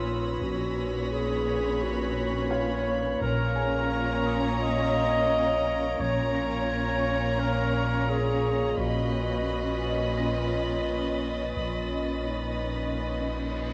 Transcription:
0.00 0.38 A#1 medium
0.00 0.38 A#2 soft
0.00 0.37 C#4 soft
0.00 0.41 D#4 soft
0.00 0.42 F4 medium
0.00 0.41 B4 soft
0.00 0.37 C#5 soft
0.00 0.38 C#5 soft
0.00 0.38 B5 soft
0.00 2.81 D#6 soft
0.00 2.11 E6 soft
0.00 2.82 A#6 soft
0.41 3.17 A#1 medium
0.41 1.07 A#1 soft
0.41 3.17 A#2 soft
0.41 3.17 C#4 soft
0.41 3.17 D#4 soft
0.41 1.13 F#4 medium
0.41 3.17 B4 soft
0.41 3.17 C#5 soft
0.41 3.17 B5 soft
1.11 1.84 G#4 medium
1.82 2.53 F#4 medium
2.51 4.56 F4 soft
2.51 3.21 C#5 medium
2.51 4.56 F5 soft
3.21 5.96 A#1 medium
3.21 3.87 A#1 medium
3.21 5.96 A#2 soft
3.21 5.96 C#4 medium
3.21 5.99 A#4 soft
3.21 3.90 A#4 medium
3.21 5.96 C#5 medium
3.21 5.96 C#5 soft
3.21 8.41 C#5 soft
3.21 5.99 F5 soft
3.21 5.96 A#5 medium
3.55 5.61 G#4 soft
3.55 5.61 G#5 medium
3.91 4.35 A#4 medium
3.91 8.41 D7 soft
4.26 6.31 D#6 soft
4.62 6.02 D#5 medium
6.00 8.75 A#1 medium
6.00 6.66 A#1 soft
6.00 8.75 A#2 soft
6.00 8.75 C#4 medium
6.00 8.75 A#4 soft
6.00 8.75 C#5 medium
6.00 8.75 C#5 soft
6.00 7.41 C#5 medium
6.00 8.75 F5 soft
6.00 8.75 A#5 soft
6.35 8.40 A#6 soft
7.39 8.11 A#4 medium
8.10 8.78 G#4 medium
8.78 11.53 A#1 medium
8.78 9.45 A#1 soft
8.78 11.54 A#2 soft
8.78 11.54 C#4 soft
8.78 10.20 F#4 medium
8.78 11.57 B4 soft
8.78 11.54 C#5 soft
8.78 11.54 D#5 soft
8.78 11.58 D#5 soft
8.78 11.54 B5 soft
8.78 13.73 D#6 soft
9.50 13.73 A6 soft
10.17 11.30 F4 soft
10.17 12.23 A#6 soft
11.57 13.73 A#1 medium
11.57 12.24 A#1 soft
11.57 13.73 A#2 soft
11.57 13.73 C#4 soft
11.57 12.29 F4 soft
11.57 13.73 B4 soft
11.57 13.73 C#5 soft
11.57 13.73 D#5 soft
11.57 13.73 B5 soft
11.57 reverse cymbal soft
12.27 13.73 D#4 soft

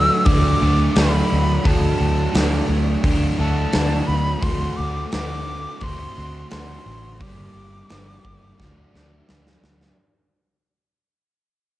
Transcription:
0.00 0.25 D3 medium
0.00 0.26 F#3 medium
0.00 0.27 A3 medium
0.00 0.27 D4 medium
0.00 0.27 E6 loud
0.25 0.52 D2 loud
0.25 0.95 D3 loud
0.25 0.63 F#3 medium
0.25 0.61 A3 loud
0.25 0.61 D4 loud
0.25 0.98 D6 loud
0.25 kick loud
0.25 open hi-hat medium
0.61 0.87 D2 loud
0.61 0.96 F#3 medium
0.61 0.97 A3 medium
0.61 0.98 D4 medium
0.96 1.21 D2 medium
0.96 1.63 D3 medium
0.96 1.65 F#3 medium
0.96 1.65 A3 medium
0.96 1.66 D4 medium
0.96 1.68 B5 loud
0.96 snare loud
0.96 open hi-hat medium
1.32 1.57 D2 medium
1.64 1.91 D2 loud
1.64 2.32 D3 loud
1.64 2.34 F#3 loud
1.64 2.35 A3 loud
1.64 2.35 D4 loud
1.64 2.70 A5 medium
1.64 kick loud
1.64 open hi-hat medium
2.00 2.26 D2 loud
2.33 2.60 D2 loud
2.33 3.03 D3 medium
2.33 3.03 F#3 medium
2.33 3.04 A3 medium
2.33 3.05 D4 medium
2.33 snare loud
2.33 open hi-hat medium
2.69 2.95 D2 loud
3.04 3.30 D2 loud
3.04 3.71 D3 medium
3.04 3.40 F#3 loud
3.04 3.39 A3 medium
3.04 3.39 D4 loud
3.04 kick loud
3.04 open hi-hat medium
3.39 3.65 D2 loud
3.39 3.72 F#3 medium
3.39 3.72 A3 medium
3.39 3.73 D4 medium
3.39 4.08 A5 loud
3.72 4.00 D2 loud
3.72 4.40 D3 medium
3.72 4.41 F#3 medium
3.72 4.41 A3 medium
3.72 4.43 D4 medium
3.72 snare loud
3.72 open hi-hat medium
4.07 4.34 D2 loud
4.07 4.45 B5 loud
4.41 4.69 D2 loud
4.41 5.11 D3 loud
4.41 5.12 A3 loud
4.41 5.13 C4 loud
4.41 5.13 F#4 loud
4.41 4.78 C6 loud
4.41 kick loud
4.41 open hi-hat medium
4.76 5.04 D2 loud
4.76 5.11 D6 loud
5.12 5.65 D2 loud
5.12 5.80 D3 medium
5.12 5.80 A3 medium
5.12 5.81 C4 medium
5.12 5.81 F#4 medium
5.12 5.85 D6 loud
5.12 snare loud
5.12 open hi-hat medium
5.81 6.07 D2 loud
5.81 6.49 D3 medium
5.81 6.16 A3 loud
5.81 6.16 C4 loud
5.81 6.15 F#4 loud
5.81 6.50 C6 loud
5.81 kick loud
5.81 open hi-hat medium
6.16 6.43 D2 loud
6.16 6.51 A3 medium
6.16 6.51 C4 medium
6.16 6.52 F#4 medium
6.50 6.78 D2 medium
6.50 7.18 D3 medium
6.50 7.19 A3 medium
6.50 7.19 C4 medium
6.50 7.20 F#4 medium
6.50 7.23 C6 loud
6.50 snare loud
6.50 open hi-hat medium
6.86 7.23 A1 medium
7.20 7.47 G1 loud
7.20 8.25 G2 loud
7.20 7.88 D3 loud
7.20 7.89 G3 loud
7.20 7.90 A#3 loud
7.20 7.90 D4 loud
7.20 9.29 D6 loud
7.20 kick loud
7.20 open hi-hat medium
7.54 7.81 G1 medium
7.89 8.17 G1 medium
7.89 8.57 D3 medium
7.89 8.58 G3 medium
7.89 8.58 A#3 medium
7.89 8.58 D4 medium
7.89 snare loud
7.89 open hi-hat medium
8.24 8.50 G1 medium
8.24 kick medium
8.58 8.85 D2 loud
8.58 9.26 D3 loud
8.58 8.94 F#3 loud
8.58 8.94 A3 loud
8.58 8.91 D4 loud
8.58 kick loud
8.58 snare medium
8.92 9.20 D2 loud
8.92 9.27 F#3 medium
8.92 9.28 A3 medium
8.92 9.29 D4 medium
8.92 snare medium
9.28 9.55 D2 medium
9.28 9.96 D3 medium
9.28 9.96 F#3 medium
9.28 9.96 A3 medium
9.28 9.97 D4 medium
9.28 snare loud
9.47 snare medium
9.63 9.89 D2 medium
9.63 snare loud
9.81 snare medium

